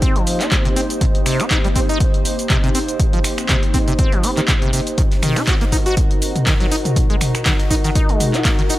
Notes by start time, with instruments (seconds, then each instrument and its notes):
Already playing: ambient pad A#3 D#4 C5, analog synth pad C4 G4 C5 D#5
0.02 acid bass C4, kick, closed hi-hat, shaker
0.16 acid bass F3, closed hi-hat
0.27 open hi-hat, shaker
0.40 acid bass D#4, clap, closed hi-hat, shaker
0.52 acid bass G3, kick, clap, closed hi-hat, shaker
0.65 acid bass C3, closed hi-hat
0.76 acid bass C4, open hi-hat, shaker
0.90 closed hi-hat, shaker
1.01 acid bass C3, kick, closed hi-hat, shaker
1.15 closed hi-hat
1.26 acid bass C3, finger snap, open hi-hat, shaker
1.40 acid bass C4, finger snap, closed hi-hat, shaker
1.51 acid bass D#4, kick, clap, closed hi-hat, shaker
1.65 acid bass G3, closed hi-hat
1.76 acid bass C4, kick, open hi-hat, shaker
1.89 acid bass D#4, closed hi-hat, shaker
2.00 kick, closed hi-hat, shaker
2.14 closed hi-hat
2.25 open hi-hat, shaker
2.39 closed hi-hat, shaker
2.50 acid bass C3, kick, clap, closed hi-hat, shaker
2.64 acid bass C3, closed hi-hat
2.75 acid bass C4, open hi-hat, shaker
2.88 closed hi-hat, shaker
3.00 kick, closed hi-hat, shaker
3.13 acid bass F3, closed hi-hat
3.24 finger snap, open hi-hat, shaker
3.38 finger snap, closed hi-hat, shaker
3.49 acid bass C3, kick, clap, closed hi-hat, shaker
3.63 closed hi-hat
3.74 acid bass C4, kick, open hi-hat, shaker
3.88 acid bass C3, closed hi-hat, shaker
3.99 acid bass C4, kick, closed hi-hat, shaker
4.12 acid bass F3, closed hi-hat
4.24 acid bass C4, open hi-hat, shaker
4.37 acid bass D#3, clap, closed hi-hat, shaker
4.48 acid bass C3, kick, clap, closed hi-hat, shaker
4.62 acid bass C3, closed hi-hat
4.73 acid bass C3, open hi-hat, shaker
4.87 closed hi-hat, shaker
4.98 acid bass D#3, analog synth pad D#4, ambient pad D#4 F#4 D#5, kick, closed hi-hat, shaker
5.11 snare, closed hi-hat
5.22 acid bass D#3, finger snap, open hi-hat, mid tom, shaker
5.36 acid bass D#4, analog synth pad A#4 F#5, finger snap, snare, closed hi-hat, shaker
5.47 acid bass F#4, kick, snare, clap, closed hi-hat, shaker
5.61 acid bass A#3, closed hi-hat
5.72 acid bass D#4, kick, closed hi-hat, open hi-hat, shaker
5.86 acid bass F#4, snare, closed hi-hat, shaker
5.97 kick, closed hi-hat, shaker
6.11 closed hi-hat
6.22 closed hi-hat, open hi-hat, shaker
6.36 closed hi-hat, mid tom, shaker
6.47 acid bass D#3, kick, snare, clap, closed hi-hat, shaker
6.60 acid bass F#3, snare, closed hi-hat
6.72 acid bass D#4, closed hi-hat, open hi-hat, shaker
6.85 closed hi-hat, mid tom, shaker
6.96 kick, closed hi-hat, shaker
7.10 acid bass G#3, closed hi-hat
7.21 finger snap, closed hi-hat, open hi-hat, mid tom, shaker
7.35 finger snap, closed hi-hat, shaker
7.46 acid bass D#3, kick, snare, clap, closed hi-hat, shaker
7.60 closed hi-hat
7.70 acid bass D#4, kick, closed hi-hat, open hi-hat, shaker
7.84 acid bass D#3, snare, closed hi-hat, shaker
7.95 acid bass D#4, kick, closed hi-hat, shaker
8.09 acid bass G#3, closed hi-hat
8.20 closed hi-hat, open hi-hat, mid tom, shaker
8.34 acid bass F#4, clap, closed hi-hat, shaker
8.45 acid bass A#3, kick, snare, clap, closed hi-hat, shaker
8.59 acid bass D#3, closed hi-hat
8.69 acid bass D#4, closed hi-hat, open hi-hat, shaker